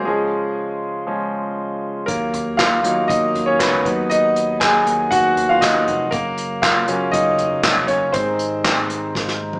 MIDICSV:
0, 0, Header, 1, 5, 480
1, 0, Start_track
1, 0, Key_signature, -5, "major"
1, 0, Tempo, 505051
1, 62, Time_signature, 4, 2, 24, 8
1, 9121, End_track
2, 0, Start_track
2, 0, Title_t, "Grand piano"
2, 0, Program_c, 0, 0
2, 0, Control_c, 0, 64, 127
2, 48, Note_on_c, 0, 68, 70
2, 54, Note_on_c, 0, 53, 49
2, 59, Note_on_c, 0, 56, 56
2, 65, Note_on_c, 0, 61, 51
2, 74, Control_c, 0, 64, 0
2, 220, Control_c, 0, 64, 127
2, 501, Note_off_c, 0, 68, 0
2, 511, Note_off_c, 0, 56, 0
2, 742, Note_off_c, 0, 53, 0
2, 748, Note_off_c, 0, 61, 0
2, 1014, Note_on_c, 0, 53, 45
2, 1019, Note_on_c, 0, 56, 37
2, 1022, Note_on_c, 0, 61, 46
2, 1234, Note_off_c, 0, 53, 0
2, 1237, Note_off_c, 0, 56, 0
2, 1238, Note_off_c, 0, 61, 0
2, 1959, Note_on_c, 0, 70, 74
2, 1978, Note_on_c, 0, 58, 56
2, 1997, Control_c, 0, 64, 0
2, 2163, Control_c, 0, 64, 127
2, 2427, Note_off_c, 0, 58, 0
2, 2445, Note_on_c, 0, 77, 87
2, 2464, Note_on_c, 0, 65, 64
2, 2466, Note_off_c, 0, 70, 0
2, 2694, Note_on_c, 0, 54, 52
2, 2698, Note_on_c, 0, 58, 43
2, 2702, Note_on_c, 0, 63, 55
2, 2910, Note_off_c, 0, 65, 0
2, 2925, Note_on_c, 0, 75, 87
2, 2930, Note_off_c, 0, 63, 0
2, 2944, Note_on_c, 0, 63, 63
2, 2949, Note_off_c, 0, 77, 0
2, 3268, Note_off_c, 0, 75, 0
2, 3278, Note_off_c, 0, 63, 0
2, 3289, Note_on_c, 0, 73, 74
2, 3304, Note_on_c, 0, 61, 62
2, 3415, Note_off_c, 0, 61, 0
2, 3415, Note_on_c, 0, 71, 82
2, 3420, Note_off_c, 0, 73, 0
2, 3434, Note_on_c, 0, 59, 65
2, 3621, Note_off_c, 0, 54, 0
2, 3623, Note_off_c, 0, 58, 0
2, 3642, Note_off_c, 0, 59, 0
2, 3652, Note_on_c, 0, 54, 50
2, 3656, Note_on_c, 0, 59, 46
2, 3663, Note_on_c, 0, 63, 54
2, 3673, Control_c, 0, 64, 0
2, 3817, Control_c, 0, 64, 127
2, 3893, Note_off_c, 0, 63, 0
2, 3893, Note_on_c, 0, 75, 93
2, 3907, Note_on_c, 0, 63, 70
2, 3914, Note_off_c, 0, 71, 0
2, 4344, Note_off_c, 0, 75, 0
2, 4352, Note_off_c, 0, 63, 0
2, 4373, Note_on_c, 0, 80, 93
2, 4392, Note_on_c, 0, 68, 69
2, 4834, Note_off_c, 0, 68, 0
2, 4853, Note_on_c, 0, 78, 93
2, 4869, Note_on_c, 0, 66, 76
2, 4873, Note_off_c, 0, 80, 0
2, 5201, Note_off_c, 0, 66, 0
2, 5219, Note_on_c, 0, 77, 80
2, 5229, Note_off_c, 0, 78, 0
2, 5236, Note_on_c, 0, 65, 65
2, 5266, Note_off_c, 0, 77, 0
2, 5283, Note_off_c, 0, 65, 0
2, 5332, Note_on_c, 0, 75, 91
2, 5345, Note_on_c, 0, 63, 68
2, 5540, Note_off_c, 0, 54, 0
2, 5542, Note_off_c, 0, 59, 0
2, 5784, Note_off_c, 0, 75, 0
2, 5791, Note_off_c, 0, 63, 0
2, 5805, Note_on_c, 0, 70, 78
2, 5820, Note_on_c, 0, 58, 68
2, 5833, Control_c, 0, 64, 0
2, 6004, Control_c, 0, 64, 127
2, 6268, Note_off_c, 0, 58, 0
2, 6291, Note_on_c, 0, 77, 84
2, 6303, Note_on_c, 0, 65, 72
2, 6309, Note_off_c, 0, 70, 0
2, 6532, Note_on_c, 0, 54, 50
2, 6537, Note_on_c, 0, 58, 45
2, 6544, Note_on_c, 0, 61, 57
2, 6750, Note_off_c, 0, 65, 0
2, 6763, Note_on_c, 0, 75, 90
2, 6776, Note_on_c, 0, 63, 72
2, 6792, Note_off_c, 0, 77, 0
2, 6856, Note_off_c, 0, 54, 0
2, 6859, Note_off_c, 0, 58, 0
2, 6863, Note_off_c, 0, 61, 0
2, 7461, Note_off_c, 0, 63, 0
2, 7481, Note_on_c, 0, 73, 74
2, 7496, Note_on_c, 0, 61, 57
2, 7514, Note_off_c, 0, 75, 0
2, 7714, Note_off_c, 0, 73, 0
2, 7722, Note_off_c, 0, 61, 0
2, 7722, Note_on_c, 0, 72, 74
2, 7728, Note_on_c, 0, 51, 50
2, 7733, Note_on_c, 0, 56, 49
2, 7737, Note_on_c, 0, 60, 59
2, 7756, Control_c, 0, 64, 0
2, 7897, Control_c, 0, 64, 127
2, 9121, Note_off_c, 0, 51, 0
2, 9121, Note_off_c, 0, 56, 0
2, 9121, Note_off_c, 0, 60, 0
2, 9121, Note_off_c, 0, 72, 0
2, 9121, End_track
3, 0, Start_track
3, 0, Title_t, "Tonewheel organ"
3, 0, Program_c, 1, 16
3, 0, Note_on_c, 1, 49, 65
3, 74, Note_on_c, 1, 56, 57
3, 77, Note_on_c, 1, 65, 66
3, 1948, Note_off_c, 1, 49, 0
3, 1970, Note_off_c, 1, 56, 0
3, 1970, Note_on_c, 1, 58, 57
3, 1971, Note_off_c, 1, 65, 0
3, 1973, Note_on_c, 1, 54, 66
3, 1974, Note_on_c, 1, 51, 57
3, 3640, Note_off_c, 1, 58, 0
3, 3642, Note_off_c, 1, 54, 0
3, 3660, Note_on_c, 1, 59, 52
3, 3665, Note_on_c, 1, 54, 62
3, 5781, Note_off_c, 1, 51, 0
3, 5800, Note_off_c, 1, 59, 0
3, 5831, Note_on_c, 1, 49, 64
3, 5835, Note_on_c, 1, 58, 56
3, 7705, Note_off_c, 1, 54, 0
3, 7727, Note_off_c, 1, 49, 0
3, 7729, Note_off_c, 1, 58, 0
3, 7743, Note_on_c, 1, 56, 59
3, 7747, Note_on_c, 1, 63, 67
3, 7748, Note_on_c, 1, 48, 68
3, 9121, Note_off_c, 1, 48, 0
3, 9121, Note_off_c, 1, 56, 0
3, 9121, Note_off_c, 1, 63, 0
3, 9121, End_track
4, 0, Start_track
4, 0, Title_t, "Picked electric bass"
4, 0, Program_c, 2, 34
4, 1980, Note_on_c, 2, 39, 94
4, 2665, Note_off_c, 2, 39, 0
4, 2692, Note_on_c, 2, 39, 82
4, 2920, Note_off_c, 2, 39, 0
4, 2943, Note_on_c, 2, 39, 85
4, 3389, Note_off_c, 2, 39, 0
4, 3665, Note_on_c, 2, 39, 93
4, 4586, Note_off_c, 2, 39, 0
4, 4627, Note_on_c, 2, 39, 93
4, 4848, Note_off_c, 2, 39, 0
4, 4861, Note_on_c, 2, 39, 81
4, 5308, Note_off_c, 2, 39, 0
4, 5345, Note_on_c, 2, 39, 84
4, 5568, Note_off_c, 2, 39, 0
4, 5593, Note_on_c, 2, 29, 87
4, 5812, Note_off_c, 2, 29, 0
4, 5820, Note_on_c, 2, 30, 95
4, 6506, Note_off_c, 2, 30, 0
4, 6543, Note_on_c, 2, 30, 92
4, 6766, Note_off_c, 2, 30, 0
4, 6781, Note_on_c, 2, 30, 90
4, 7228, Note_off_c, 2, 30, 0
4, 7257, Note_on_c, 2, 29, 77
4, 7483, Note_off_c, 2, 29, 0
4, 7496, Note_on_c, 2, 30, 100
4, 7722, Note_off_c, 2, 30, 0
4, 7741, Note_on_c, 2, 32, 101
4, 8425, Note_off_c, 2, 32, 0
4, 8455, Note_on_c, 2, 32, 101
4, 8682, Note_off_c, 2, 32, 0
4, 8701, Note_on_c, 2, 32, 92
4, 9121, Note_off_c, 2, 32, 0
4, 9121, End_track
5, 0, Start_track
5, 0, Title_t, "Drums"
5, 1979, Note_on_c, 9, 42, 85
5, 1980, Note_on_c, 9, 36, 101
5, 2074, Note_off_c, 9, 42, 0
5, 2075, Note_off_c, 9, 36, 0
5, 2221, Note_on_c, 9, 42, 68
5, 2221, Note_on_c, 9, 43, 58
5, 2316, Note_off_c, 9, 42, 0
5, 2316, Note_off_c, 9, 43, 0
5, 2460, Note_on_c, 9, 38, 94
5, 2460, Note_on_c, 9, 42, 64
5, 2461, Note_on_c, 9, 36, 104
5, 2470, Note_on_c, 9, 39, 80
5, 2555, Note_off_c, 9, 38, 0
5, 2555, Note_off_c, 9, 42, 0
5, 2556, Note_off_c, 9, 36, 0
5, 2565, Note_off_c, 9, 39, 0
5, 2703, Note_on_c, 9, 42, 69
5, 2798, Note_off_c, 9, 42, 0
5, 2941, Note_on_c, 9, 36, 102
5, 2946, Note_on_c, 9, 42, 98
5, 3036, Note_off_c, 9, 36, 0
5, 3041, Note_off_c, 9, 42, 0
5, 3187, Note_on_c, 9, 43, 52
5, 3188, Note_on_c, 9, 42, 67
5, 3282, Note_off_c, 9, 43, 0
5, 3283, Note_off_c, 9, 42, 0
5, 3421, Note_on_c, 9, 36, 101
5, 3422, Note_on_c, 9, 42, 84
5, 3424, Note_on_c, 9, 38, 91
5, 3434, Note_on_c, 9, 39, 85
5, 3516, Note_off_c, 9, 36, 0
5, 3517, Note_off_c, 9, 42, 0
5, 3519, Note_off_c, 9, 38, 0
5, 3529, Note_off_c, 9, 39, 0
5, 3543, Note_on_c, 9, 43, 56
5, 3638, Note_off_c, 9, 43, 0
5, 3662, Note_on_c, 9, 36, 95
5, 3667, Note_on_c, 9, 42, 60
5, 3668, Note_on_c, 9, 43, 58
5, 3757, Note_off_c, 9, 36, 0
5, 3762, Note_off_c, 9, 42, 0
5, 3763, Note_off_c, 9, 43, 0
5, 3906, Note_on_c, 9, 42, 91
5, 4001, Note_off_c, 9, 42, 0
5, 4146, Note_on_c, 9, 42, 70
5, 4241, Note_off_c, 9, 42, 0
5, 4381, Note_on_c, 9, 38, 104
5, 4381, Note_on_c, 9, 42, 66
5, 4383, Note_on_c, 9, 36, 106
5, 4391, Note_on_c, 9, 39, 85
5, 4476, Note_off_c, 9, 38, 0
5, 4476, Note_off_c, 9, 42, 0
5, 4478, Note_off_c, 9, 36, 0
5, 4486, Note_off_c, 9, 39, 0
5, 4626, Note_on_c, 9, 42, 68
5, 4721, Note_off_c, 9, 42, 0
5, 4863, Note_on_c, 9, 36, 105
5, 4863, Note_on_c, 9, 42, 93
5, 4958, Note_off_c, 9, 36, 0
5, 4958, Note_off_c, 9, 42, 0
5, 5105, Note_on_c, 9, 43, 58
5, 5106, Note_on_c, 9, 42, 65
5, 5200, Note_off_c, 9, 43, 0
5, 5201, Note_off_c, 9, 42, 0
5, 5341, Note_on_c, 9, 36, 95
5, 5341, Note_on_c, 9, 42, 84
5, 5343, Note_on_c, 9, 38, 99
5, 5353, Note_on_c, 9, 39, 83
5, 5436, Note_off_c, 9, 36, 0
5, 5436, Note_off_c, 9, 42, 0
5, 5438, Note_off_c, 9, 38, 0
5, 5448, Note_off_c, 9, 39, 0
5, 5461, Note_on_c, 9, 43, 63
5, 5556, Note_off_c, 9, 43, 0
5, 5586, Note_on_c, 9, 42, 58
5, 5587, Note_on_c, 9, 43, 60
5, 5681, Note_off_c, 9, 42, 0
5, 5682, Note_off_c, 9, 43, 0
5, 5819, Note_on_c, 9, 42, 86
5, 5821, Note_on_c, 9, 36, 114
5, 5914, Note_off_c, 9, 42, 0
5, 5916, Note_off_c, 9, 36, 0
5, 6060, Note_on_c, 9, 42, 71
5, 6155, Note_off_c, 9, 42, 0
5, 6301, Note_on_c, 9, 38, 101
5, 6301, Note_on_c, 9, 42, 66
5, 6302, Note_on_c, 9, 36, 110
5, 6310, Note_on_c, 9, 39, 78
5, 6396, Note_off_c, 9, 38, 0
5, 6396, Note_off_c, 9, 42, 0
5, 6397, Note_off_c, 9, 36, 0
5, 6405, Note_off_c, 9, 39, 0
5, 6537, Note_on_c, 9, 42, 67
5, 6632, Note_off_c, 9, 42, 0
5, 6781, Note_on_c, 9, 36, 102
5, 6781, Note_on_c, 9, 42, 102
5, 6876, Note_off_c, 9, 36, 0
5, 6876, Note_off_c, 9, 42, 0
5, 7018, Note_on_c, 9, 43, 56
5, 7019, Note_on_c, 9, 42, 67
5, 7113, Note_off_c, 9, 43, 0
5, 7114, Note_off_c, 9, 42, 0
5, 7253, Note_on_c, 9, 42, 83
5, 7256, Note_on_c, 9, 38, 105
5, 7257, Note_on_c, 9, 36, 106
5, 7266, Note_on_c, 9, 39, 90
5, 7348, Note_off_c, 9, 42, 0
5, 7351, Note_off_c, 9, 38, 0
5, 7352, Note_off_c, 9, 36, 0
5, 7361, Note_off_c, 9, 39, 0
5, 7375, Note_on_c, 9, 43, 60
5, 7470, Note_off_c, 9, 43, 0
5, 7489, Note_on_c, 9, 42, 64
5, 7490, Note_on_c, 9, 43, 58
5, 7584, Note_off_c, 9, 42, 0
5, 7585, Note_off_c, 9, 43, 0
5, 7733, Note_on_c, 9, 42, 90
5, 7738, Note_on_c, 9, 36, 105
5, 7828, Note_off_c, 9, 42, 0
5, 7833, Note_off_c, 9, 36, 0
5, 7975, Note_on_c, 9, 42, 72
5, 8070, Note_off_c, 9, 42, 0
5, 8216, Note_on_c, 9, 38, 102
5, 8216, Note_on_c, 9, 42, 70
5, 8220, Note_on_c, 9, 36, 106
5, 8226, Note_on_c, 9, 39, 81
5, 8311, Note_off_c, 9, 38, 0
5, 8311, Note_off_c, 9, 42, 0
5, 8315, Note_off_c, 9, 36, 0
5, 8321, Note_off_c, 9, 39, 0
5, 8456, Note_on_c, 9, 42, 71
5, 8552, Note_off_c, 9, 42, 0
5, 8698, Note_on_c, 9, 36, 107
5, 8699, Note_on_c, 9, 38, 55
5, 8793, Note_off_c, 9, 36, 0
5, 8794, Note_off_c, 9, 38, 0
5, 8818, Note_on_c, 9, 38, 46
5, 8913, Note_off_c, 9, 38, 0
5, 9059, Note_on_c, 9, 48, 57
5, 9121, Note_off_c, 9, 48, 0
5, 9121, End_track
0, 0, End_of_file